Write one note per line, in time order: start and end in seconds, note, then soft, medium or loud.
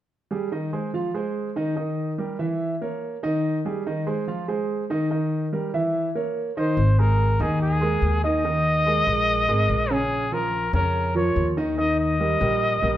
0.31 0.48 G3 medium
0.31 0.48 G4 medium
0.31 0.48 G#4 medium
0.52 0.69 D#3 medium
0.52 0.69 D#4 medium
0.52 0.69 D#5 medium
0.73 0.90 G#3 medium
0.73 0.90 G#4 medium
0.73 0.90 C5 medium
0.94 1.11 F3 medium
0.94 1.11 F4 medium
0.94 1.11 F5 medium
1.14 1.49 G#3 medium
1.14 1.49 G#4 medium
1.14 1.49 C5 medium
1.56 1.73 D#3 medium
1.56 1.73 D#4 medium
1.56 1.73 D#5 medium
1.76 2.11 D#3 medium
1.76 2.11 D#4 medium
1.76 2.11 D#5 medium
2.18 2.36 G3 medium
2.18 2.36 G4 medium
2.18 2.36 A#4 medium
2.39 2.73 E3 medium
2.39 2.74 E4 medium
2.39 2.74 E5 medium
2.81 3.16 A#3 medium
2.81 3.16 A#4 medium
2.81 3.16 C#5 medium
3.23 3.57 D#3 medium
3.23 3.57 D#4 medium
3.23 3.58 D#5 medium
3.65 3.82 G3 medium
3.65 3.82 G4 medium
3.65 3.83 G#4 medium
3.86 4.03 D#3 medium
3.86 4.03 D#4 medium
3.86 4.04 D#5 medium
4.07 4.24 G#3 medium
4.07 4.24 G#4 medium
4.07 4.24 C5 medium
4.27 4.45 F3 medium
4.27 4.45 F4 medium
4.27 4.45 F5 medium
4.48 4.82 G#3 medium
4.48 4.83 G#4 medium
4.48 4.83 C5 medium
4.90 5.07 D#3 medium
4.90 5.07 D#4 medium
4.90 5.07 D#5 medium
5.11 5.45 D#3 medium
5.11 5.45 D#4 medium
5.11 5.45 D#5 medium
5.53 5.70 G3 medium
5.53 5.70 G4 medium
5.53 5.70 A#4 medium
5.74 6.08 E3 medium
5.74 6.08 E4 medium
5.74 6.08 E5 medium
6.15 6.49 A#3 medium
6.15 6.50 A#4 medium
6.15 6.50 C#5 medium
6.57 6.74 D#3 medium
6.57 6.74 D#4 medium
6.57 7.01 C5 medium
6.57 6.74 D#5 medium
6.77 7.36 G#1 medium
6.99 7.33 G#3 medium
6.99 7.33 G#4 medium
6.99 7.33 A#4 medium
6.99 7.44 A#4 medium
7.40 7.99 D#2 medium
7.40 7.74 D#3 medium
7.40 7.75 D#4 medium
7.40 7.61 G#4 medium
7.40 7.75 D#5 medium
7.62 8.20 G#4 medium
7.81 8.16 G#3 medium
7.81 8.16 G#4 medium
7.81 8.16 A#4 medium
8.02 9.01 D#2 medium
8.24 8.41 D#3 medium
8.24 8.41 D#4 medium
8.24 8.41 D#5 medium
8.24 9.94 D#5 loud
8.45 8.79 D#3 medium
8.45 8.79 D#4 medium
8.45 8.79 D#5 medium
8.86 9.03 G#3 medium
8.86 9.04 G#4 medium
8.86 9.04 A#4 medium
9.07 9.46 A#1 medium
9.07 9.41 G#3 medium
9.07 9.42 G#4 medium
9.07 9.42 A#4 medium
9.48 9.68 G#1 medium
9.48 9.83 G#3 medium
9.48 9.83 G#4 medium
9.48 9.83 A#4 medium
9.69 10.67 A#1 medium
9.90 10.25 C#3 medium
9.90 10.25 C#4 medium
9.90 10.35 G#4 loud
9.90 10.25 C#5 medium
10.32 10.66 F3 medium
10.32 10.66 F4 medium
10.32 10.67 A#4 medium
10.32 10.74 A#4 medium
10.73 11.32 F2 medium
10.73 11.08 C#3 medium
10.73 11.08 C#4 medium
10.73 11.13 A#4 loud
10.73 11.08 C#5 medium
11.15 11.49 F3 medium
11.15 11.50 F4 medium
11.15 11.50 A#4 medium
11.15 11.49 C#5 medium
11.36 12.34 D#2 medium
11.57 11.74 D#3 medium
11.57 11.74 D#4 medium
11.57 11.75 D#5 medium
11.78 12.12 D#3 medium
11.78 12.12 D#4 medium
11.78 12.13 D#5 medium
11.78 11.98 D#5 loud
12.00 12.97 D#5 loud
12.20 12.37 G3 medium
12.20 12.37 G4 medium
12.20 12.37 A#4 medium
12.41 12.80 A#1 medium
12.41 12.75 G3 medium
12.41 12.75 G4 medium
12.41 12.75 A#4 medium
12.82 12.97 A#1 medium
12.82 12.97 G3 medium
12.82 12.97 G4 medium
12.82 12.97 A#4 medium